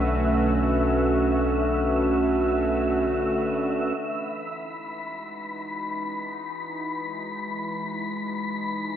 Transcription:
0.00 3.92 B1 medium
0.00 3.98 D3 medium
0.00 3.98 A3 medium
0.00 6.39 C#4 medium
0.00 8.96 F#4 medium
0.00 8.96 B4 medium
0.00 4.01 E5 medium
3.96 8.96 E3 medium
3.96 8.96 B5 medium
4.26 8.96 D#4 medium
4.37 8.96 G#3 medium

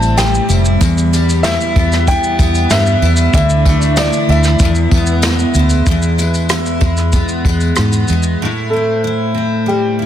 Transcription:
0.00 0.38 A1 loud
0.00 0.81 A2 medium
0.00 0.17 G3 medium
0.00 3.30 G3 medium
0.00 0.77 A3 medium
0.00 0.77 C4 medium
0.00 0.87 C4 medium
0.00 0.48 E4 medium
0.00 0.19 A5 medium
0.00 tambourine soft
0.00 shaker medium
0.17 1.13 G3 medium
0.17 0.62 G5 medium
0.17 snare loud
0.17 tambourine medium
0.17 shaker medium
0.35 shaker medium
0.49 0.75 F1 medium
0.49 1.44 E4 medium
0.49 tambourine medium
0.49 shaker medium
0.65 shaker soft
0.81 3.34 E2 medium
0.81 1.56 E2 loud
0.81 3.31 E3 medium
0.81 3.31 B3 medium
0.81 kick loud
0.81 tambourine medium
0.81 shaker medium
0.98 shaker soft
1.13 2.70 G3 medium
1.13 tambourine soft
1.13 shaker soft
1.29 tambourine soft
1.29 shaker medium
1.43 2.08 E4 medium
1.43 2.09 E5 loud
1.43 snare loud
1.43 tambourine medium
1.43 shaker medium
1.61 shaker soft
1.76 2.15 E2 medium
1.76 2.39 B3 medium
1.76 kick medium
1.76 tambourine soft
1.92 snare soft
1.92 shaker medium
2.08 3.02 E4 medium
2.08 2.73 G5 loud
2.08 kick medium
2.08 tambourine medium
2.08 shaker medium
2.24 shaker soft
2.39 2.65 E2 medium
2.39 3.41 B3 medium
2.39 kick medium
2.39 tambourine medium
2.39 shaker medium
2.55 tambourine soft
2.55 shaker soft
2.70 2.96 G2 medium
2.70 3.40 G3 medium
2.70 3.33 E5 loud
2.70 snare loud
2.70 tambourine medium
2.70 shaker medium
2.86 shaker medium
3.02 3.28 E2 medium
3.02 3.97 E4 medium
3.02 tambourine soft
3.17 tambourine soft
3.17 shaker medium
3.33 4.09 D2 loud
3.33 4.67 D3 medium
3.33 4.59 E3 medium
3.33 4.59 A3 medium
3.33 4.59 D4 medium
3.33 3.99 E5 medium
3.33 kick loud
3.33 tambourine medium
3.33 shaker medium
3.49 shaker soft
3.65 4.67 A3 medium
3.65 kick medium
3.65 tambourine soft
3.82 tambourine soft
3.82 shaker medium
3.97 5.56 E4 medium
3.97 4.27 D5 medium
3.97 snare loud
3.97 tambourine medium
3.97 shaker medium
4.13 shaker soft
4.29 4.55 D2 medium
4.29 4.67 D4 medium
4.29 5.52 E5 medium
4.29 tambourine soft
4.44 snare soft
4.44 shaker medium
4.60 4.86 E2 loud
4.60 5.87 E2 medium
4.60 5.86 E3 medium
4.60 5.85 G#3 medium
4.60 5.86 B3 medium
4.60 kick loud
4.60 tambourine medium
4.60 shaker medium
4.75 shaker medium
4.91 5.44 E2 medium
4.91 7.13 B3 medium
4.91 kick medium
4.91 tambourine soft
5.07 shaker soft
5.22 6.18 G#3 medium
5.22 snare loud
5.22 tambourine medium
5.22 shaker medium
5.39 shaker medium
5.54 5.81 D2 medium
5.54 5.88 E4 medium
5.54 tambourine medium
5.54 shaker medium
5.70 tambourine soft
5.70 shaker medium
5.86 6.62 E2 medium
5.86 8.41 E2 medium
5.86 6.50 E4 medium
5.86 kick loud
5.86 tambourine soft
5.86 shaker medium
6.02 shaker soft
6.19 6.79 G#3 medium
6.19 tambourine soft
6.19 shaker soft
6.34 tambourine soft
6.34 shaker soft
6.49 8.43 E4 medium
6.49 cross-stick loud
6.49 tambourine medium
6.49 shaker medium
6.66 shaker soft
6.81 7.21 E2 medium
6.81 7.45 G#3 medium
6.81 kick medium
6.81 tambourine soft
6.97 cross-stick soft
6.97 shaker soft
7.13 7.77 B3 medium
7.13 kick medium
7.13 tambourine soft
7.13 shaker medium
7.29 shaker soft
7.45 7.71 E2 medium
7.45 8.08 G#3 medium
7.45 kick medium
7.45 tambourine soft
7.61 tambourine soft
7.61 shaker soft
7.75 8.04 G#2 medium
7.75 8.47 B3 medium
7.75 cross-stick loud
7.75 tambourine medium
7.75 shaker medium
7.93 shaker soft
8.08 8.35 E2 medium
8.08 8.47 G#3 medium
8.08 tambourine soft
8.08 shaker soft
8.23 shaker soft
8.42 10.06 A2 medium
8.42 9.04 E4 medium
8.70 9.33 C4 soft
8.70 9.70 A4 medium
9.04 9.98 E4 medium
9.34 10.06 C4 soft
9.66 10.06 G3 soft
9.66 10.06 G4 medium
9.99 10.06 E4 soft

